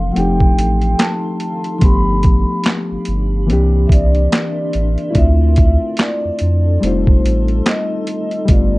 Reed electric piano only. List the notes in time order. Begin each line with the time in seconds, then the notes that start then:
Already playing: E3 F3 A3 C4 D4
0.13 F3 A3 C4
0.18 D#4 G4
1.79 F3 A3 B3
1.84 D4 G4
3.47 E3 A#3 C4
3.51 D4 G4
5.10 A3 C4 E4
5.15 D4 F4
6.81 G3 A3 C4
6.85 D#4 F4
8.45 G3 A3 B3
8.50 D4 F4